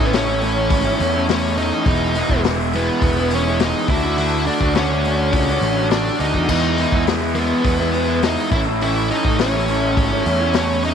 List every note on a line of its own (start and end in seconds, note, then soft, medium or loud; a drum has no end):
0.00 0.70 A1 medium
0.00 0.12 A2 loud
0.00 0.13 E3 medium
0.00 0.14 A3 medium
0.00 0.14 C#4 medium
0.00 0.15 E4 medium
0.05 0.12 B3 medium
0.13 0.56 A2 medium
0.13 0.40 E3 loud
0.13 0.29 A3 loud
0.13 1.25 C#4 loud
0.13 0.28 C#4 loud
0.13 0.26 E4 loud
0.13 snare loud
0.13 open hi-hat medium
0.27 0.42 A3 medium
0.27 0.43 C#4 medium
0.27 0.43 E4 medium
0.41 0.99 E3 medium
0.41 0.87 A3 medium
0.41 0.86 C#4 medium
0.41 0.84 E4 medium
0.41 open hi-hat medium
0.70 0.94 G#1 loud
0.70 kick loud
0.70 open hi-hat medium
0.85 1.00 A3 medium
0.85 1.01 C#4 medium
0.85 1.02 E4 medium
1.00 1.71 E2 loud
1.00 1.28 E3 medium
1.00 1.16 A3 medium
1.00 1.14 C#4 medium
1.00 1.13 E4 medium
1.00 open hi-hat medium
1.14 1.29 A3 medium
1.14 1.29 C#4 medium
1.14 1.30 E4 medium
1.28 1.84 A2 loud
1.28 1.55 E3 loud
1.28 1.57 A3 loud
1.28 1.57 C#4 medium
1.28 1.58 E4 loud
1.28 snare loud
1.28 open hi-hat medium
1.56 1.84 E3 medium
1.56 1.73 A3 medium
1.56 1.72 C#4 medium
1.56 2.40 D#4 medium
1.56 1.70 E4 medium
1.56 open hi-hat medium
1.71 1.86 A3 medium
1.71 1.85 C#4 medium
1.71 1.84 E4 medium
1.85 2.21 E1 loud
1.85 2.14 E3 medium
1.85 2.15 G#3 loud
1.85 2.16 B3 loud
1.85 2.17 E4 loud
1.85 kick loud
1.85 open hi-hat medium
2.15 2.42 E3 medium
2.15 2.32 G#3 medium
2.15 2.30 B3 medium
2.15 2.28 E4 medium
2.15 open hi-hat medium
2.29 2.88 E1 medium
2.29 2.44 G#3 medium
2.29 2.45 B3 medium
2.29 2.46 E4 medium
2.29 kick medium
2.44 2.72 E3 loud
2.44 2.59 G#3 loud
2.44 2.58 B3 loud
2.44 2.57 E4 loud
2.44 snare loud
2.44 open hi-hat loud
2.58 2.73 G#3 medium
2.58 2.74 B3 medium
2.58 2.75 E4 medium
2.73 3.30 E3 medium
2.73 3.19 G#3 medium
2.73 3.17 B3 medium
2.73 3.34 B3 loud
2.73 3.16 E4 medium
2.73 open hi-hat medium
3.02 3.73 E1 loud
3.02 kick loud
3.02 open hi-hat medium
3.17 3.32 G#3 medium
3.17 3.33 B3 medium
3.17 3.33 E4 medium
3.31 3.60 E3 medium
3.31 3.48 G#3 medium
3.31 3.47 B3 medium
3.31 3.45 E4 loud
3.31 open hi-hat medium
3.35 3.60 C#4 loud
3.46 3.61 G#3 medium
3.46 3.62 B3 medium
3.46 3.62 E4 medium
3.60 3.88 E3 loud
3.60 3.88 G#3 medium
3.60 3.88 B3 loud
3.60 3.89 D#4 loud
3.60 snare loud
3.60 open hi-hat loud
3.64 3.89 E4 loud
3.88 4.47 D2 loud
3.88 4.17 D3 medium
3.88 4.05 A3 medium
3.88 4.04 D4 loud
3.88 4.17 E4 loud
3.88 4.02 F#4 loud
3.88 kick loud
3.88 open hi-hat medium
4.03 4.18 A3 medium
4.03 4.19 D4 medium
4.03 4.20 F#4 medium
4.18 4.45 D3 medium
4.18 4.46 A3 medium
4.18 4.47 D4 medium
4.18 4.45 E4 loud
4.18 4.48 F#4 loud
4.18 open hi-hat loud
4.46 4.75 D3 medium
4.46 4.63 A3 medium
4.46 4.74 D4 loud
4.46 4.62 D4 medium
4.46 4.60 F#4 medium
4.46 open hi-hat medium
4.61 5.33 D2 medium
4.61 4.76 A3 medium
4.61 4.77 D4 medium
4.61 4.78 F#4 medium
4.61 kick medium
4.75 5.04 D3 medium
4.75 4.92 A3 medium
4.75 5.87 C#4 loud
4.75 4.91 D4 loud
4.75 snare loud
4.75 open hi-hat medium
4.79 4.89 F#4 loud
4.90 5.05 A3 medium
4.90 5.06 D4 medium
4.90 5.07 F#4 medium
5.04 5.61 D3 medium
5.04 5.50 A3 medium
5.04 5.48 D4 medium
5.04 5.46 F#4 medium
5.04 open hi-hat medium
5.33 5.57 C#2 medium
5.33 kick loud
5.33 open hi-hat medium
5.48 5.62 A3 medium
5.48 5.63 D4 medium
5.48 5.64 F#4 medium
5.61 6.09 A1 loud
5.61 5.89 D3 medium
5.61 5.79 A3 medium
5.61 5.77 D4 medium
5.61 5.76 F#4 loud
5.61 open hi-hat medium
5.77 5.91 A3 medium
5.77 5.91 D4 medium
5.77 5.92 F#4 medium
5.91 6.19 D3 loud
5.91 6.20 A3 medium
5.91 6.20 D4 medium
5.91 6.21 D4 loud
5.91 6.22 F#4 loud
5.91 snare loud
5.91 open hi-hat medium
6.20 6.33 D2 medium
6.20 6.47 D3 medium
6.20 6.36 A3 medium
6.20 6.35 D4 medium
6.20 7.03 D#4 medium
6.20 6.33 F#4 medium
6.20 open hi-hat medium
6.34 6.48 E2 medium
6.34 6.49 A3 medium
6.34 6.48 D4 medium
6.34 6.47 F#4 medium
6.34 kick medium
6.49 6.84 E2 loud
6.49 6.77 E3 medium
6.49 6.79 G#3 medium
6.49 6.79 B3 loud
6.49 6.81 E4 loud
6.49 kick loud
6.49 crash loud
6.78 7.06 E3 medium
6.78 6.95 G#3 medium
6.78 6.93 B3 medium
6.78 6.92 E4 medium
6.78 open hi-hat medium
6.92 7.51 E2 medium
6.92 7.07 G#3 medium
6.92 7.07 B3 medium
6.92 7.09 E4 medium
6.92 kick medium
7.06 7.35 E3 medium
7.06 7.24 G#3 loud
7.06 7.22 B3 loud
7.06 7.21 E4 loud
7.06 snare loud
7.06 open hi-hat loud
7.21 7.37 G#3 medium
7.21 7.37 B3 medium
7.21 7.38 E4 medium
7.35 7.93 E3 medium
7.35 7.82 G#3 medium
7.35 8.18 B3 loud
7.35 7.80 B3 medium
7.35 7.79 E4 medium
7.35 open hi-hat medium
7.64 8.36 E2 medium
7.64 kick loud
7.64 open hi-hat medium
7.80 7.94 G#3 medium
7.80 7.94 B3 medium
7.80 7.96 E4 medium
7.94 8.23 E3 medium
7.94 8.11 G#3 medium
7.94 8.09 B3 medium
7.94 8.08 E4 loud
7.94 open hi-hat medium
8.08 8.24 G#3 medium
8.08 8.24 B3 medium
8.08 8.26 E4 medium
8.22 8.53 E3 loud
8.22 8.54 G#3 loud
8.22 8.51 B3 loud
8.22 8.51 D#4 loud
8.22 snare loud
8.22 open hi-hat loud
8.26 8.56 E4 loud
8.51 9.11 A1 medium
8.51 8.80 A2 medium
8.51 8.82 E3 loud
8.51 8.69 A3 loud
8.51 8.60 E4 loud
8.51 kick loud
8.51 open hi-hat medium
8.56 8.67 C#4 loud
8.56 8.67 E4 loud
8.67 8.82 A3 medium
8.67 8.83 C#4 medium
8.67 8.84 E4 medium
8.81 9.38 A2 loud
8.81 9.10 E3 medium
8.81 9.11 A3 medium
8.81 9.12 C#4 loud
8.81 9.11 E4 loud
8.81 9.13 E4 loud
8.81 open hi-hat medium
9.10 9.40 E3 medium
9.10 9.27 A3 medium
9.10 9.25 C#4 medium
9.10 9.40 D#4 loud
9.10 9.25 E4 medium
9.10 open hi-hat medium
9.25 9.97 A1 medium
9.25 9.40 A3 medium
9.25 9.40 C#4 medium
9.25 9.42 E4 medium
9.25 kick medium
9.39 9.83 A2 loud
9.39 9.67 E3 medium
9.39 9.56 A3 loud
9.39 10.55 C#4 medium
9.39 9.54 C#4 loud
9.39 9.52 E4 loud
9.39 snare loud
9.39 open hi-hat loud
9.54 9.69 A3 medium
9.54 9.69 C#4 medium
9.54 9.71 E4 medium
9.68 10.24 E3 medium
9.68 10.13 A3 medium
9.68 10.12 C#4 medium
9.68 10.11 E4 medium
9.68 open hi-hat medium
9.97 10.20 G#1 loud
9.97 kick loud
9.97 open hi-hat medium
10.12 10.25 A3 medium
10.12 10.27 C#4 medium
10.12 10.27 E4 medium
10.25 10.94 E2 loud
10.25 10.55 E3 medium
10.25 10.43 A3 medium
10.25 10.41 C#4 medium
10.25 10.39 E4 medium
10.25 open hi-hat medium
10.41 10.56 A3 medium
10.41 10.56 C#4 medium
10.41 10.57 E4 medium
10.54 10.94 A2 loud
10.54 10.83 E3 medium
10.54 10.84 A3 loud
10.54 10.84 C#4 loud
10.54 10.85 C#4 loud
10.54 snare loud
10.54 open hi-hat medium
10.58 10.86 E4 loud
10.84 10.94 E3 medium
10.84 10.94 A3 medium
10.84 10.94 C#4 medium
10.84 10.94 D#4 loud
10.84 10.94 E4 medium
10.84 open hi-hat medium